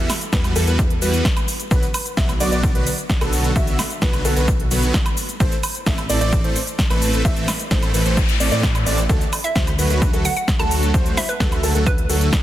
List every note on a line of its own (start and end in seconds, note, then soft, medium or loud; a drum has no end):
0.10 snare medium
0.10 open hi-hat loud
0.10 high woodblock medium
0.10 shaker medium
0.21 closed hi-hat soft
0.21 shaker soft
0.33 0.53 E2 loud
0.33 0.53 E3 medium
0.33 0.53 G3 medium
0.33 0.53 B3 medium
0.33 0.53 F#4 medium
0.33 0.53 B4 medium
0.33 kick loud
0.33 snare loud
0.33 closed hi-hat medium
0.33 shaker soft
0.44 closed hi-hat soft
0.44 high woodblock medium
0.44 shaker soft
0.56 0.65 E2 medium
0.56 0.64 E3 medium
0.56 0.64 G3 medium
0.56 0.65 B3 medium
0.56 0.64 F#4 medium
0.56 0.64 A4 loud
0.56 0.65 A4 loud
0.56 open hi-hat loud
0.56 shaker medium
0.67 1.00 E2 loud
0.67 0.81 E3 medium
0.67 0.81 G3 medium
0.67 0.81 B3 medium
0.67 0.81 F#4 medium
0.67 0.81 B4 medium
0.67 closed hi-hat soft
0.67 shaker soft
0.79 kick loud
0.79 closed hi-hat medium
0.79 shaker soft
0.90 closed hi-hat soft
1.02 1.22 E2 loud
1.02 1.24 E3 medium
1.02 1.24 G3 medium
1.02 1.24 B3 medium
1.02 1.24 F#4 medium
1.02 1.24 B4 medium
1.02 open hi-hat loud
1.02 shaker medium
1.14 closed hi-hat soft
1.14 shaker soft
1.25 kick loud
1.25 snare loud
1.25 closed hi-hat medium
1.25 shaker soft
1.37 closed hi-hat soft
1.37 high woodblock medium
1.37 shaker soft
1.48 open hi-hat loud
1.48 shaker medium
1.60 closed hi-hat soft
1.60 shaker soft
1.71 1.83 B1 medium
1.71 1.85 D3 medium
1.71 1.85 F#3 medium
1.71 1.85 B3 medium
1.71 1.85 F#4 medium
1.71 1.85 B4 medium
1.71 1.85 B4 loud
1.71 kick loud
1.71 closed hi-hat medium
1.71 shaker soft
1.83 closed hi-hat soft
1.83 shaker soft
1.94 open hi-hat loud
1.94 high woodblock medium
1.94 shaker medium
2.06 closed hi-hat soft
2.06 shaker soft
2.17 2.38 B1 loud
2.17 2.31 D3 medium
2.17 2.31 F#3 medium
2.17 2.31 B3 medium
2.17 2.31 F#4 medium
2.17 2.31 E5 medium
2.17 kick loud
2.17 snare loud
2.17 closed hi-hat medium
2.17 shaker soft
2.29 closed hi-hat soft
2.29 high woodblock medium
2.29 shaker soft
2.40 2.50 B1 loud
2.40 2.50 D3 loud
2.40 2.50 F#3 medium
2.40 2.50 B3 medium
2.40 2.50 F#4 medium
2.40 2.50 D5 loud
2.40 open hi-hat medium
2.40 shaker medium
2.52 2.73 B1 loud
2.52 2.72 D3 medium
2.52 2.72 F#3 medium
2.52 2.72 B3 medium
2.52 2.72 F#4 medium
2.52 2.72 D5 loud
2.52 closed hi-hat soft
2.52 shaker soft
2.63 kick loud
2.63 closed hi-hat medium
2.63 shaker soft
2.75 2.87 B1 loud
2.75 2.89 D3 medium
2.75 2.89 F#3 medium
2.75 2.89 B3 medium
2.75 2.89 F#4 medium
2.75 2.89 B4 medium
2.75 closed hi-hat soft
2.87 open hi-hat loud
2.87 shaker medium
2.98 closed hi-hat soft
2.98 shaker soft
3.10 kick loud
3.10 snare loud
3.10 closed hi-hat medium
3.10 shaker soft
3.21 3.53 B1 medium
3.21 3.53 D3 medium
3.21 3.53 F#3 medium
3.21 3.53 B3 medium
3.21 3.53 F#4 medium
3.21 3.53 A4 medium
3.21 3.53 A4 loud
3.21 closed hi-hat soft
3.21 high woodblock medium
3.21 shaker soft
3.33 open hi-hat medium
3.33 shaker medium
3.44 closed hi-hat soft
3.44 shaker soft
3.56 3.76 B1 loud
3.56 3.78 D3 medium
3.56 3.78 F#3 medium
3.56 3.78 B3 medium
3.56 3.78 F#4 medium
3.56 3.78 E5 loud
3.56 kick loud
3.56 closed hi-hat medium
3.56 shaker soft
3.67 closed hi-hat soft
3.67 shaker soft
3.79 snare medium
3.79 open hi-hat loud
3.79 high woodblock medium
3.79 shaker medium
3.90 closed hi-hat soft
3.90 shaker soft
4.02 4.23 B1 loud
4.02 4.22 D3 medium
4.02 4.22 F#3 medium
4.02 4.22 B3 medium
4.02 4.22 F#4 medium
4.02 4.22 B4 medium
4.02 kick loud
4.02 snare loud
4.02 closed hi-hat medium
4.02 shaker soft
4.13 closed hi-hat soft
4.13 high woodblock medium
4.13 shaker soft
4.25 4.34 B1 loud
4.25 4.34 D3 medium
4.25 4.34 F#3 medium
4.25 4.34 B3 medium
4.25 4.34 F#4 medium
4.25 4.34 A4 loud
4.25 open hi-hat medium
4.25 shaker medium
4.36 4.69 B1 loud
4.36 4.50 D3 medium
4.36 4.50 F#3 medium
4.36 4.50 B3 medium
4.36 4.50 F#4 medium
4.36 4.50 B4 medium
4.36 closed hi-hat soft
4.36 shaker soft
4.48 kick loud
4.48 closed hi-hat medium
4.48 shaker soft
4.60 closed hi-hat soft
4.71 4.91 B1 loud
4.71 4.93 D3 medium
4.71 4.93 F#3 medium
4.71 4.93 B3 medium
4.71 4.93 F#4 medium
4.71 4.93 B4 medium
4.71 open hi-hat loud
4.71 shaker medium
4.83 closed hi-hat soft
4.83 shaker soft
4.94 kick loud
4.94 snare loud
4.94 closed hi-hat medium
4.94 shaker soft
5.06 closed hi-hat soft
5.06 high woodblock medium
5.06 shaker soft
5.17 open hi-hat medium
5.17 shaker medium
5.29 closed hi-hat soft
5.29 shaker soft
5.40 5.52 A1 loud
5.40 5.54 E3 medium
5.40 5.54 A3 medium
5.40 5.54 C4 medium
5.40 5.54 A4 medium
5.40 5.54 C5 medium
5.40 kick loud
5.40 closed hi-hat medium
5.40 shaker soft
5.52 closed hi-hat soft
5.52 shaker soft
5.63 open hi-hat loud
5.63 high woodblock medium
5.63 shaker medium
5.75 closed hi-hat soft
5.75 shaker soft
5.86 6.07 A1 loud
5.86 6.00 E3 medium
5.86 6.00 A3 medium
5.86 6.00 C4 medium
5.86 6.00 A4 medium
5.86 6.00 E5 medium
5.86 kick loud
5.86 snare loud
5.86 closed hi-hat medium
5.86 shaker soft
5.98 closed hi-hat soft
5.98 high woodblock medium
5.98 shaker soft
6.09 6.19 A1 medium
6.09 6.19 E3 medium
6.09 6.19 A3 medium
6.09 6.19 C4 medium
6.09 6.19 A4 medium
6.09 6.19 D5 loud
6.09 open hi-hat medium
6.09 shaker medium
6.21 6.42 A1 loud
6.21 6.41 E3 medium
6.21 6.41 A3 medium
6.21 6.41 C4 medium
6.21 6.41 A4 medium
6.21 6.41 D5 loud
6.21 closed hi-hat soft
6.21 shaker soft
6.33 kick loud
6.33 closed hi-hat medium
6.33 shaker soft
6.44 6.56 A1 loud
6.44 6.58 E3 medium
6.44 6.58 A3 medium
6.44 6.58 C4 medium
6.44 6.58 A4 medium
6.44 6.58 C5 medium
6.44 closed hi-hat soft
6.56 open hi-hat loud
6.56 shaker medium
6.67 closed hi-hat soft
6.67 shaker soft
6.79 kick loud
6.79 snare loud
6.79 closed hi-hat medium
6.79 shaker soft
6.90 7.23 A1 loud
6.90 7.22 E3 medium
6.90 7.22 A3 medium
6.90 7.22 C4 medium
6.90 7.22 A4 medium
6.90 7.22 B4 loud
6.90 closed hi-hat soft
6.90 high woodblock medium
6.90 shaker soft
7.02 open hi-hat medium
7.02 shaker medium
7.13 closed hi-hat soft
7.13 shaker soft
7.25 7.45 A1 loud
7.25 7.47 E3 loud
7.25 7.47 A3 medium
7.25 7.47 C4 medium
7.25 7.47 A4 medium
7.25 7.47 E5 loud
7.25 kick loud
7.25 closed hi-hat medium
7.25 noise sweep medium
7.25 shaker soft
7.37 closed hi-hat soft
7.37 shaker soft
7.48 snare medium
7.48 open hi-hat loud
7.48 high woodblock medium
7.48 shaker medium
7.60 closed hi-hat soft
7.60 shaker soft
7.71 7.92 A1 loud
7.71 7.91 E3 medium
7.71 7.91 A3 medium
7.71 7.91 C4 medium
7.71 7.91 A4 medium
7.71 7.91 C5 medium
7.71 kick loud
7.71 snare loud
7.71 closed hi-hat medium
7.71 shaker soft
7.83 closed hi-hat soft
7.83 high woodblock medium
7.83 shaker soft
7.94 8.03 A1 loud
7.94 8.03 E3 medium
7.94 8.03 A3 medium
7.94 8.03 C4 medium
7.94 8.03 A4 medium
7.94 8.03 B4 loud
7.94 open hi-hat medium
7.94 shaker medium
8.06 8.38 A1 loud
8.06 8.19 E3 medium
8.06 8.20 A3 medium
8.06 8.20 C4 medium
8.06 8.19 A4 medium
8.06 8.19 C5 medium
8.06 8.20 C5 medium
8.06 closed hi-hat soft
8.06 shaker soft
8.17 kick loud
8.17 closed hi-hat medium
8.17 shaker soft
8.29 closed hi-hat soft
8.29 shaker soft
8.40 8.50 A1 medium
8.40 8.50 E3 medium
8.40 8.50 A3 medium
8.40 8.50 C4 medium
8.40 8.50 A4 medium
8.40 8.50 D5 medium
8.40 open hi-hat loud
8.40 shaker medium
8.52 8.84 A2 loud
8.52 8.66 E3 loud
8.52 8.66 A3 medium
8.52 8.66 C4 medium
8.52 8.66 A4 medium
8.52 8.66 D5 loud
8.52 closed hi-hat soft
8.52 shaker soft
8.63 kick loud
8.63 snare loud
8.63 closed hi-hat medium
8.63 shaker soft
8.75 closed hi-hat soft
8.75 high woodblock medium
8.75 shaker soft
8.86 9.07 A1 loud
8.86 9.00 E3 medium
8.86 9.00 A3 medium
8.86 9.00 C4 medium
8.86 9.00 A4 medium
8.86 9.00 D5 medium
8.86 open hi-hat medium
8.86 shaker medium
8.98 closed hi-hat soft
8.98 shaker soft
9.09 9.21 D2 loud
9.09 9.23 D3 medium
9.09 9.23 F#3 medium
9.09 9.23 A3 medium
9.09 9.23 F#4 medium
9.09 9.23 A4 medium
9.09 kick loud
9.09 closed hi-hat medium
9.09 shaker soft
9.21 closed hi-hat soft
9.21 shaker soft
9.33 open hi-hat loud
9.33 high woodblock medium
9.33 shaker medium
9.44 9.52 E5 medium
9.44 closed hi-hat soft
9.44 shaker soft
9.55 9.76 D2 loud
9.55 9.69 D3 medium
9.55 9.70 F#3 medium
9.55 9.69 A3 medium
9.55 9.70 F#4 medium
9.55 9.69 C5 medium
9.55 9.63 E5 medium
9.55 kick loud
9.55 snare loud
9.55 closed hi-hat medium
9.55 shaker soft
9.67 closed hi-hat soft
9.67 high woodblock medium
9.67 shaker soft
9.79 9.88 D2 loud
9.79 9.89 D3 loud
9.79 9.89 F#3 medium
9.79 9.88 A3 medium
9.79 9.89 F#4 medium
9.79 9.88 B4 loud
9.79 9.89 B4 loud
9.79 open hi-hat medium
9.79 shaker medium
9.90 10.11 D2 loud
9.90 10.11 D3 medium
9.90 10.11 F#3 medium
9.90 10.11 A3 medium
9.90 10.11 F#4 medium
9.90 10.11 B4 loud
9.90 closed hi-hat soft
9.90 shaker soft
10.02 kick loud
10.02 closed hi-hat medium
10.02 shaker soft
10.13 10.25 D2 loud
10.13 10.27 D3 medium
10.13 10.27 F#3 medium
10.13 10.27 A3 medium
10.13 10.27 F#4 medium
10.13 10.27 A4 medium
10.13 closed hi-hat soft
10.25 10.32 F#5 medium
10.25 open hi-hat loud
10.25 shaker medium
10.37 10.44 F#5 medium
10.37 closed hi-hat soft
10.37 shaker soft
10.48 kick loud
10.48 snare loud
10.48 closed hi-hat medium
10.48 shaker soft
10.59 10.92 D2 loud
10.59 10.91 D3 medium
10.59 10.91 F#3 medium
10.59 10.91 A3 medium
10.59 10.91 F#4 medium
10.59 10.91 A4 loud
10.59 10.74 A5 medium
10.59 closed hi-hat soft
10.59 high woodblock medium
10.59 shaker soft
10.71 open hi-hat medium
10.71 shaker medium
10.83 closed hi-hat soft
10.83 shaker soft
10.94 11.14 D2 loud
10.94 11.16 D3 medium
10.94 11.16 F#3 medium
10.94 11.16 A3 medium
10.94 11.16 F#4 medium
10.94 11.16 C5 loud
10.94 kick loud
10.94 closed hi-hat medium
10.94 shaker soft
11.06 closed hi-hat soft
11.06 shaker soft
11.17 11.27 E5 loud
11.17 snare medium
11.17 open hi-hat loud
11.17 high woodblock medium
11.17 shaker medium
11.29 11.36 B4 medium
11.29 closed hi-hat soft
11.29 shaker soft
11.40 11.61 D2 loud
11.40 11.61 D3 medium
11.40 11.61 F#3 medium
11.40 11.61 A3 medium
11.40 11.61 F#4 medium
11.40 11.61 A4 medium
11.40 11.48 B4 medium
11.40 kick loud
11.40 snare loud
11.40 closed hi-hat medium
11.40 shaker soft
11.52 closed hi-hat soft
11.52 high woodblock medium
11.52 shaker soft
11.63 11.73 D2 medium
11.63 11.72 D3 medium
11.63 11.72 F#3 medium
11.63 11.72 A3 medium
11.63 11.72 F#4 medium
11.63 11.72 A4 loud
11.63 open hi-hat loud
11.63 shaker medium
11.75 12.07 D2 loud
11.75 11.89 D3 medium
11.75 11.89 F#3 medium
11.75 11.89 A3 medium
11.75 11.89 F#4 medium
11.75 11.89 A4 medium
11.75 closed hi-hat soft
11.75 shaker soft
11.86 12.01 B4 medium
11.86 kick loud
11.86 closed hi-hat medium
11.86 shaker soft
11.98 closed hi-hat soft
12.09 12.29 D2 medium
12.09 12.32 D3 medium
12.09 12.32 F#3 medium
12.09 12.32 A3 medium
12.09 12.32 F#4 medium
12.09 12.32 A4 medium
12.09 open hi-hat loud
12.09 shaker medium
12.21 closed hi-hat soft
12.21 shaker soft
12.33 kick loud
12.33 snare loud
12.33 closed hi-hat medium
12.33 shaker soft